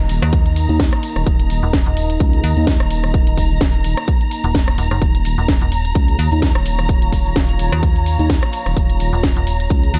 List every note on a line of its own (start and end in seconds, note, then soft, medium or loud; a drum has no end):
0.00 0.20 D#1 loud
0.00 9.99 A#3 medium
0.00 4.98 D#4 medium
0.00 5.00 D#5 medium
0.00 9.99 A#5 medium
0.00 downlifter medium
0.09 open hi-hat loud
0.09 ride medium
0.22 0.67 D#2 loud
0.22 cross-stick medium
0.22 closed hi-hat medium
0.33 kick loud
0.33 closed hi-hat medium
0.33 ride medium
0.46 closed hi-hat soft
0.56 open hi-hat loud
0.56 ride medium
0.69 0.91 D#2 medium
0.69 closed hi-hat soft
0.80 kick loud
0.80 snare loud
0.80 closed hi-hat medium
0.80 ride medium
0.93 cross-stick medium
0.93 closed hi-hat soft
1.03 open hi-hat loud
1.03 ride medium
1.16 1.25 D#1 loud
1.16 cross-stick medium
1.16 closed hi-hat soft
1.26 1.61 D#1 medium
1.26 kick loud
1.26 closed hi-hat medium
1.26 ride medium
1.40 closed hi-hat medium
1.50 open hi-hat loud
1.50 ride medium
1.63 1.84 D#1 loud
1.73 kick loud
1.73 snare loud
1.73 closed hi-hat medium
1.73 ride medium
1.86 2.19 D#1 loud
1.86 closed hi-hat soft
1.97 open hi-hat loud
1.97 ride medium
2.10 closed hi-hat medium
2.20 2.42 C#2 medium
2.20 kick loud
2.20 closed hi-hat medium
2.20 ride medium
2.33 closed hi-hat soft
2.44 2.55 D#2 loud
2.44 open hi-hat loud
2.44 ride medium
2.57 2.78 D#2 loud
2.57 closed hi-hat soft
2.67 kick loud
2.67 snare loud
2.67 closed hi-hat medium
2.67 ride medium
2.80 3.25 D#1 loud
2.80 cross-stick medium
2.80 closed hi-hat soft
2.91 open hi-hat loud
2.91 ride medium
3.04 cross-stick medium
3.04 closed hi-hat soft
3.14 kick loud
3.14 closed hi-hat medium
3.14 ride medium
3.27 3.59 D#1 loud
3.27 closed hi-hat medium
3.37 kick medium
3.37 open hi-hat loud
3.37 ride medium
3.61 3.95 D#1 loud
3.61 kick loud
3.61 snare loud
3.61 closed hi-hat medium
3.61 ride medium
3.74 closed hi-hat soft
3.84 open hi-hat loud
3.84 ride medium
3.97 cross-stick medium
3.97 closed hi-hat soft
4.08 kick loud
4.08 closed hi-hat medium
4.08 ride medium
4.21 closed hi-hat soft
4.31 open hi-hat loud
4.31 ride medium
4.44 4.76 D#1 loud
4.44 closed hi-hat soft
4.55 kick loud
4.55 snare loud
4.55 closed hi-hat medium
4.55 ride medium
4.68 cross-stick medium
4.68 closed hi-hat soft
4.78 4.89 D#1 medium
4.78 open hi-hat loud
4.78 ride medium
4.91 5.00 F#1 loud
4.91 cross-stick medium
4.91 closed hi-hat soft
5.01 5.36 D#1 loud
5.01 9.99 F4 medium
5.01 9.99 C#5 medium
5.01 kick loud
5.01 closed hi-hat medium
5.01 ride medium
5.01 maracas soft
5.15 closed hi-hat medium
5.25 open hi-hat loud
5.25 ride medium
5.25 maracas loud
5.38 5.59 D#1 loud
5.38 maracas soft
5.48 kick loud
5.48 snare loud
5.48 closed hi-hat medium
5.48 ride medium
5.48 maracas soft
5.61 5.94 D#1 loud
5.61 closed hi-hat soft
5.61 maracas soft
5.72 open hi-hat medium
5.72 ride medium
5.72 maracas medium
5.85 closed hi-hat medium
5.85 maracas soft
5.95 6.17 C#2 medium
5.95 kick loud
5.95 closed hi-hat medium
5.95 ride medium
5.95 maracas medium
6.08 closed hi-hat soft
6.08 maracas soft
6.18 6.30 D#2 loud
6.18 open hi-hat loud
6.18 ride medium
6.18 maracas medium
6.31 6.53 D#2 loud
6.31 closed hi-hat soft
6.31 maracas soft
6.42 kick loud
6.42 snare loud
6.42 closed hi-hat medium
6.42 ride medium
6.42 maracas medium
6.55 7.00 D#1 loud
6.55 cross-stick medium
6.55 closed hi-hat soft
6.66 open hi-hat loud
6.66 ride medium
6.66 maracas loud
6.79 cross-stick medium
6.79 closed hi-hat soft
6.79 maracas soft
6.89 kick loud
6.89 closed hi-hat medium
6.89 ride medium
6.89 maracas medium
7.02 7.34 D#1 medium
7.02 closed hi-hat medium
7.12 kick medium
7.12 open hi-hat loud
7.12 ride medium
7.12 maracas medium
7.25 maracas soft
7.36 7.70 D#1 loud
7.36 kick loud
7.36 snare loud
7.36 closed hi-hat medium
7.36 ride medium
7.36 maracas medium
7.49 closed hi-hat soft
7.49 maracas soft
7.59 open hi-hat medium
7.59 ride medium
7.59 maracas medium
7.72 8.17 D#2 loud
7.72 cross-stick medium
7.72 closed hi-hat medium
7.72 maracas soft
7.83 kick loud
7.83 closed hi-hat medium
7.83 ride medium
7.83 maracas medium
7.96 closed hi-hat soft
7.96 maracas soft
8.06 open hi-hat loud
8.06 ride medium
8.06 maracas medium
8.19 8.41 D#2 loud
8.19 closed hi-hat soft
8.19 maracas soft
8.30 kick loud
8.30 snare loud
8.30 closed hi-hat medium
8.30 ride medium
8.30 maracas medium
8.43 cross-stick medium
8.43 closed hi-hat soft
8.52 open hi-hat medium
8.52 ride medium
8.52 maracas loud
8.66 8.75 D#1 loud
8.66 cross-stick medium
8.66 closed hi-hat soft
8.66 maracas soft
8.77 9.11 D#1 loud
8.77 kick loud
8.77 closed hi-hat medium
8.77 ride medium
8.77 maracas medium
8.90 closed hi-hat medium
9.00 open hi-hat loud
9.00 ride medium
9.00 maracas medium
9.12 9.34 D#1 loud
9.12 maracas soft
9.23 kick loud
9.23 snare loud
9.23 closed hi-hat medium
9.23 ride medium
9.23 maracas medium
9.36 9.69 D#1 loud
9.36 closed hi-hat soft
9.36 maracas soft
9.47 open hi-hat medium
9.47 ride medium
9.47 maracas medium
9.60 closed hi-hat medium
9.60 maracas soft
9.70 9.92 C#2 medium
9.70 kick loud
9.70 closed hi-hat medium
9.70 ride medium
9.70 maracas medium
9.83 closed hi-hat soft
9.83 maracas soft
9.94 9.99 D#2 loud
9.94 open hi-hat loud
9.94 ride medium
9.94 maracas medium